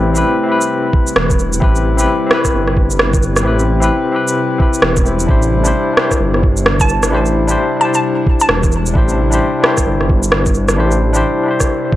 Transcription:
Already playing: detuned saw bass A1, ambient pad C3 G3 A3 E4, tine electric piano C4 E4 G4 B4
0.14 tine electric piano C4 E4 G4 B4, shaker
0.44 tine electric piano C4 E4
0.49 tine electric piano G4 B4
0.61 shaker
0.93 kick
1.07 shaker
1.16 detuned saw bass E1, cross-stick
1.30 kick, shaker
1.39 shaker
1.53 shaker
1.60 detuned saw bass A1, tine electric piano C4 E4 G4 B4, ambient pad B4, kick
1.76 shaker
1.97 tine electric piano C4 E4 G4 B4, shaker
2.26 tine electric piano C4 E4
2.31 tine electric piano G4 B4, cross-stick
2.45 kick, cross-stick, shaker
2.53 detuned saw bass G1
2.68 cross-stick
2.77 kick
2.90 shaker
2.99 cross-stick
3.14 kick, shaker
3.23 shaker
3.36 cross-stick, shaker
3.43 detuned saw bass A1, tine electric piano C4 E4 G4
3.47 tine electric piano B4
3.59 shaker
3.80 tine electric piano C4 E4 G4, shaker
3.84 tine electric piano B4
4.12 tine electric piano C4 E4 G4
4.16 tine electric piano B4
4.28 shaker
4.58 tine electric piano C4 E4 G4 B4, kick
4.74 shaker
4.82 detuned saw bass E1, cross-stick
4.97 kick, shaker
5.04 tine electric piano C4 E4 G4 C5, shaker
5.20 shaker
5.26 detuned saw bass A1, tine electric piano D4 E4 G4, ambient pad D4, kick
5.31 tine electric piano C5
5.42 shaker
5.63 tine electric piano D4 E4 G4, shaker
5.67 tine electric piano C5
5.93 tine electric piano D4 E4, cross-stick
5.99 tine electric piano G4 C5
6.11 kick, cross-stick, shaker
6.20 detuned saw bass G1
6.34 cross-stick
6.43 kick
6.57 shaker
6.66 cross-stick
6.80 synth pluck A5, kick, shaker
6.89 shaker
7.03 cross-stick, shaker
7.10 detuned saw bass A1, tine electric piano D4 E4 G4
7.14 tine electric piano C5
7.26 shaker
7.47 tine electric piano D4 E4 G4 C5, shaker
7.77 tine electric piano D4 E4
7.81 tine electric piano G4, synth pluck A5
7.85 tine electric piano C5
7.94 synth pluck A5, shaker
8.27 kick
8.40 synth pluck A5, shaker
8.49 detuned saw bass E1, cross-stick
8.63 kick, shaker
8.72 shaker
8.86 shaker
8.94 detuned saw bass A1, tine electric piano D4 E4 G4, kick
8.98 tine electric piano C5
9.09 shaker
9.30 tine electric piano D4 E4 G4, shaker
9.35 tine electric piano C5
9.60 tine electric piano D4 E4, cross-stick
9.65 tine electric piano G4 C5
9.77 kick, cross-stick, shaker
9.86 detuned saw bass G1
10.01 cross-stick
10.09 kick
10.23 shaker
10.32 cross-stick
10.46 kick, shaker
10.54 shaker
10.68 cross-stick, shaker
10.76 detuned saw bass A1, tine electric piano D4 E4 G4 C5
10.91 shaker
11.13 tine electric piano D4 E4 G4, shaker
11.17 tine electric piano C5
11.43 tine electric piano D4 E4
11.48 tine electric piano G4 C5
11.60 kick, cross-stick, shaker
11.92 kick

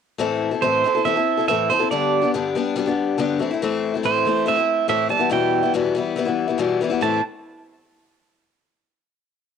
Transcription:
0.18 steel-string acoustic guitar A2 E3 C4 E4 A4
0.51 steel-string acoustic guitar C4 E4 A4
0.62 steel-string acoustic guitar A2 E3 C4 E4 A4, pedal steel guitar C5
0.84 steel-string acoustic guitar E3 C4 E4 A4
0.95 steel-string acoustic guitar C4 E4 A4
1.05 steel-string acoustic guitar E3 C4 E4 A4, pedal steel guitar E5
1.16 steel-string acoustic guitar C4 E4 A4
1.37 steel-string acoustic guitar C4 E4 A4
1.48 steel-string acoustic guitar A2 E3 C4 E4 A4, pedal steel guitar E5
1.70 steel-string acoustic guitar E3 C4 E4 A4, pedal steel guitar C5
1.79 steel-string acoustic guitar C4 E4 A4
1.91 steel-string acoustic guitar G2 D3 G3 B3 D4 G4, pedal steel guitar D5
2.22 steel-string acoustic guitar G3 B3 D4 G4
2.34 steel-string acoustic guitar G2 D3 G3 B3 D4 G4
2.55 steel-string acoustic guitar G3 B3 D4 G4
2.76 steel-string acoustic guitar G3 B3 D4 G4
2.86 steel-string acoustic guitar G3 B3 D4 G4
3.18 steel-string acoustic guitar G2 D3 G3 B3 D4 G4
3.39 steel-string acoustic guitar E3 A3 C4 E4
3.51 steel-string acoustic guitar A3 C4 E4
3.62 steel-string acoustic guitar A2 E3 A3 C4 E4
3.94 steel-string acoustic guitar A3 C4 E4
4.03 steel-string acoustic guitar A2 E3 A3 C4 E4, pedal steel guitar C5
4.25 steel-string acoustic guitar E3 A3 C4 E4
4.46 steel-string acoustic guitar E3 A3 C4 E4, pedal steel guitar E5
4.57 steel-string acoustic guitar A3 C4 E4
4.88 steel-string acoustic guitar A2 E3 A3 C4 E4, pedal steel guitar E5
5.09 steel-string acoustic guitar E3 G3 B3 E4, pedal steel guitar A5
5.19 steel-string acoustic guitar E3 G3 B3 E4
5.30 steel-string acoustic guitar E2 B2 E3 G3 B3 E4, pedal steel guitar G5
5.63 steel-string acoustic guitar E3 G3 B3 E4
5.74 steel-string acoustic guitar E2 B2 E3 G3 B3 E4
5.95 steel-string acoustic guitar E3 G3 B3 E4
6.16 steel-string acoustic guitar E3 G3 B3 E4
6.25 steel-string acoustic guitar E3 G3 B3 E4
6.48 steel-string acoustic guitar E3 G3 B3 E4
6.58 steel-string acoustic guitar E2 B2 E3 G3 B3 E4
6.81 steel-string acoustic guitar E3 G3 B3 E4
6.90 steel-string acoustic guitar E3 G3 B3 E4
7.01 steel-string acoustic guitar A2 E3 A3 C4 E4, pedal steel guitar A5

